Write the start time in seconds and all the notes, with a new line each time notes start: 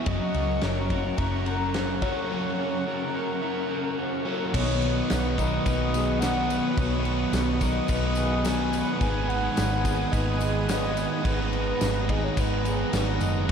Already playing: E3 E4
0.06 F#1 F#2 C#3 F#3 F#4 A#4 D#5 F#5 C#6, kick, ride
0.34 C#2 C#4, ride
0.61 F#1 C#4 E4 A#4 C#5, snare, ride
0.90 C#4 A#4, kick, ride
1.17 F#1 E4 C#5 E5 A#5, kick, ride
1.46 A#4, ride
1.74 C#4 C#5, snare, ride
2.02 F#2 C#3 F#3 E4 A#4 C#5, kick, ride
2.29 F#2 C#3 F#3 F#4 C#5
2.58 C#4
2.86 C#4 E4 A#4
3.14 C#4 A#4
3.42 E4 C#5 E5
3.71 A#4
3.99 C#4 C#5
4.25 F#2 C#3 F#3 E4 A#4 C#5
4.53 B1 B2 D#3 F#3 B3 B4 C#5 D#5 F#5 C#6 D#6, kick, crash, tambourine
4.57 B3 D#4
4.82 F#3 B3, crash
5.10 B1 B2 F#3 B3, snare, tambourine, crash
5.37 B2 F#3 B3 A#4 D#5, kick, tambourine, crash
5.64 B1 B2 D#3 F#3 D#5, kick, tambourine, crash
5.68 B3 D#4 B4
5.94 F#3 B3 G#4, tambourine, crash
6.19 B2 F#5, snare, tambourine, crash
6.23 F#3 B3 A#4
6.50 B4, tambourine, crash
6.77 B1 B2 D#3 F#3 B3 C#5 D#5, kick, tambourine, crash
6.81 D#4
7.05 F#3 B3, crash
7.32 B1 B2 F#3 B3, snare, tambourine, crash
7.61 B2 F#3 B3 A#4 D#5, kick, tambourine, crash
7.88 B1 B2 D#3 F#3 B3 D#4 B4 D#5, kick, tambourine, crash
8.15 B3 G#4, tambourine, crash
8.20 F#3
8.45 B2 F#3 B3 A#4 G#5, snare, tambourine, crash
8.73 B4, tambourine, crash
9.00 G#1 G#2 D#3 G#3 B3 D#4 B4 G#5 D#6, kick, tambourine, crash
9.28 D#3 G#3 F#5, crash
9.56 G#1 G#2 D#3 G#3, snare, tambourine, crash
9.85 G#2 D#3 G#3 G#4, kick, tambourine, crash
10.11 G#1 G#2 D#3 G#3 B3 B4 D#5, kick, tambourine, crash
10.16 D#4
10.41 D#3 G#3 G#4, tambourine, crash
10.67 G#2 D#3 G#3 C#5 D#5, snare, tambourine, crash
10.97 D#5, tambourine, crash
11.24 G#1 G#2 D#3 G#3 B3 D#4 B4 A#5, kick, tambourine, crash
11.53 D#3 G#3, crash
11.81 G#1 G#2 D#3 G#3, snare, tambourine, crash
12.09 G#2 D#3 G#3 G#4 D#5, kick, crash
12.24 C#5
12.37 G#1 G#2 D#3 G#3 B3 D#4 B4, kick, tambourine, crash
12.65 D#3 G#3 G#4, tambourine, crash
12.93 G#1 G#2 D#3 G#3 C#5, snare, tambourine, crash
13.20 F#1 D#5, tambourine, crash
13.48 F#2